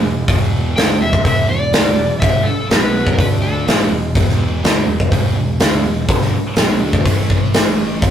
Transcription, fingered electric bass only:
0.03 0.25 E1 medium
0.28 0.73 E1 medium
0.76 0.99 D2 medium
1.00 1.23 E1 medium
1.25 1.47 E1 medium
1.49 1.71 E1 medium
1.73 1.95 D2 medium
1.98 2.20 E1 medium
2.21 2.44 G1 medium
2.46 muted fingered electric bass stroke soft
2.70 3.15 B1 medium
3.19 3.64 D2 medium
3.67 3.90 A#1 medium
3.90 4.13 E1 medium
4.15 4.60 E1 loud
4.63 4.86 D2 medium
4.88 5.10 E1 medium
5.12 5.35 E1 medium
5.37 5.59 E1 medium
5.60 5.83 D2 medium
5.85 6.07 E1 medium
6.09 6.31 G1 medium
6.33 muted fingered electric bass stroke soft
6.57 6.80 B1 medium
6.81 7.04 D2 medium
7.06 7.98 A1 medium
8.02 8.11 E1 loud

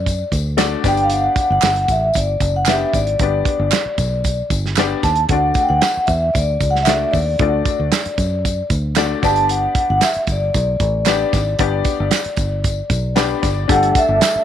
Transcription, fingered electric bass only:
0.00 0.22 F#2 medium
0.32 0.75 D2 medium
0.85 1.27 G1 medium
1.50 1.61 G1 medium
1.63 1.84 G1 medium
1.89 2.10 A1 medium
2.16 2.37 G1 medium
2.41 2.84 F#1 medium
2.94 3.15 G#1 medium
3.20 3.41 G1 medium
3.59 3.70 G1 medium
3.86 muted fingered electric bass stroke soft
3.98 4.41 B1 medium
4.51 4.93 G1 medium
5.03 5.25 D#2 medium
5.30 5.51 D2 medium
5.70 5.80 D2 medium
5.97 muted fingered electric bass stroke soft
6.08 6.30 E2 medium
6.35 6.56 D2 medium
6.61 7.04 C#2 medium
7.14 7.35 D#2 medium
7.40 7.61 D2 loud
7.79 7.90 D2 medium
8.06 muted fingered electric bass stroke soft
8.18 8.61 F#2 medium
8.71 9.14 D2 medium
9.23 9.66 G1 medium
9.90 10.00 G1 medium
10.16 muted fingered electric bass stroke soft
10.28 10.49 G1 medium
10.55 10.76 B1 medium
10.80 11.23 A1 loud
11.34 11.55 G#1 medium
11.60 11.81 G1 loud
12.00 12.10 G1 medium
12.26 muted fingered electric bass stroke soft
12.38 12.81 G1 medium
12.90 13.33 B1 medium
13.43 13.64 G1 medium
13.69 13.91 G1 loud
14.09 14.19 G1 medium
14.36 muted fingered electric bass stroke medium

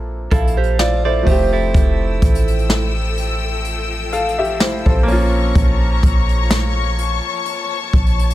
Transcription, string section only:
1.74 8.34 F3 medium
1.74 5.05 A4 medium
1.74 5.05 G5 medium
1.74 5.05 E6 loud
5.08 8.34 C#5 medium
5.08 6.96 A#5 medium
5.08 8.34 C#6 loud
6.99 8.34 A5 medium

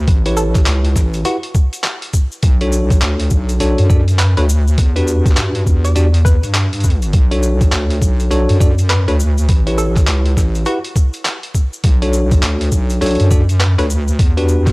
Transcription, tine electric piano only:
0.26 1.23 E4 medium
0.26 1.23 G4 medium
0.26 1.23 B4 medium
0.26 1.23 C#5 loud
1.25 1.36 E4 medium
1.25 1.36 G4 medium
1.25 1.36 B4 medium
1.25 1.36 F#5 loud
2.61 3.58 D4 medium
2.61 3.58 F#4 medium
2.61 3.58 A4 medium
2.61 3.58 C#5 medium
3.60 3.87 D4 loud
3.60 3.87 F#4 medium
3.60 3.87 A4 medium
3.60 3.87 C#5 loud
3.90 4.01 D4 medium
3.90 4.01 F#4 medium
3.90 4.01 A4 medium
3.90 4.01 D5 medium
4.37 4.44 D4 medium
4.37 4.44 F#4 medium
4.37 4.44 A4 medium
4.37 4.44 C#5 loud
4.96 5.93 D4 medium
4.96 5.93 F#4 medium
4.96 5.93 G4 medium
4.96 5.93 B4 loud
5.96 6.07 D4 medium
5.96 6.07 F#4 medium
5.96 6.07 G4 medium
5.96 6.07 D5 loud
7.31 8.28 D4 medium
7.31 8.28 F#4 medium
7.31 8.28 A4 medium
7.31 8.28 C#5 medium
8.31 8.58 D4 loud
8.31 8.58 F#4 medium
8.31 8.58 A4 medium
8.31 8.58 C#5 loud
8.60 8.71 D4 medium
8.60 8.71 F#4 medium
8.60 8.71 A4 medium
8.60 8.71 D5 medium
9.08 9.15 D4 medium
9.08 9.15 F#4 medium
9.08 9.15 A4 medium
9.08 9.15 C#5 loud
9.67 10.64 E4 medium
9.67 10.64 G4 medium
9.67 10.64 B4 medium
9.67 10.64 C#5 loud
10.66 10.77 E4 medium
10.66 10.77 G4 medium
10.66 10.77 B4 medium
10.66 10.77 F#5 loud
12.02 12.99 D4 medium
12.02 12.99 F#4 medium
12.02 12.99 A4 medium
12.02 12.99 C#5 medium
13.01 13.28 D4 loud
13.01 13.28 F#4 medium
13.01 13.28 A4 medium
13.01 13.28 C#5 loud
13.31 13.42 D4 medium
13.31 13.42 F#4 medium
13.31 13.42 A4 medium
13.31 13.42 D5 medium
13.79 13.85 D4 medium
13.79 13.85 F#4 medium
13.79 13.85 A4 medium
13.79 13.85 C#5 loud
14.37 14.72 D4 medium
14.37 14.72 F#4 medium
14.37 14.72 G4 medium
14.37 14.72 B4 loud

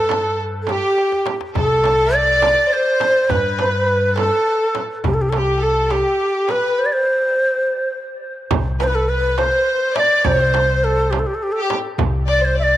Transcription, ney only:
0.00 0.38 A4 medium
0.63 0.72 A4 medium
0.71 1.35 G4 medium
1.58 2.17 A4 medium
2.16 2.75 D5 loud
2.73 3.32 C5 medium
3.30 4.17 B4 medium
4.18 4.79 A4 medium
5.06 5.15 G4 medium
5.14 5.23 A4 medium
5.21 5.31 G4 medium
5.29 5.39 A4 medium
5.38 5.64 G4 medium
5.63 5.93 A4 medium
5.91 6.52 G4 medium
6.51 6.80 B4 medium
6.79 6.87 C5 medium
6.86 6.94 D5 medium
6.93 7.94 C5 medium
8.81 8.84 B4 medium
8.81 8.89 C5 medium
8.88 8.97 B4 medium
8.95 9.11 A4 medium
9.09 9.40 B4 medium
9.38 9.97 C5 medium
9.96 10.17 D5 medium
9.96 10.00 E5 medium
10.17 10.27 D5 medium
10.25 10.86 C5 medium
10.84 11.12 A4 medium
11.11 11.20 G4 medium
11.19 11.28 A4 medium
11.27 11.36 G4 medium
11.35 11.44 A4 medium
11.43 11.54 G4 medium
11.52 11.64 A4 medium
11.62 11.78 G4 medium
12.30 12.46 D5 loud
12.45 12.58 C5 medium
12.59 12.64 E5 medium
12.63 12.77 D5 medium

